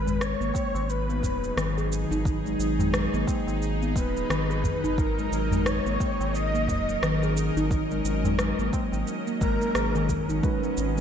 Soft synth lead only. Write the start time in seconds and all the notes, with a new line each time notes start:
Already playing: B4
0.21 C#5
0.89 B4
3.96 B4
4.98 A#4
5.67 C#5
6.35 D#5
9.41 A#4